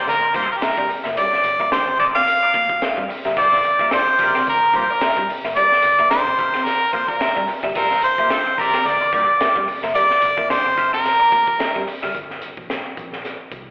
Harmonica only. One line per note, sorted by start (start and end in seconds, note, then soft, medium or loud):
0.09 0.34 A#4 loud
0.36 0.50 C5 medium
0.51 0.59 A#4 medium
0.57 0.66 G4 medium
0.64 0.91 A#4 medium
1.17 1.68 D5 loud
1.72 1.98 C5 medium
1.99 2.06 D5 loud
2.15 3.05 F5 loud
3.38 3.88 D5 loud
3.94 4.44 C5 loud
4.49 4.77 A#4 medium
4.76 4.92 C5 medium
4.90 5.30 A#4 medium
5.56 6.07 D5 loud
6.10 6.66 C5 loud
6.64 6.94 A#4 medium
6.92 7.10 C5 medium
7.08 7.48 A#4 medium
7.76 8.01 A#4 medium
8.04 8.60 C5 loud
8.59 8.87 A#4 loud
8.86 9.13 D5 loud
9.15 9.65 D5 medium
9.95 10.46 D5 loud
10.50 10.90 C5 medium
10.93 11.83 A#4 loud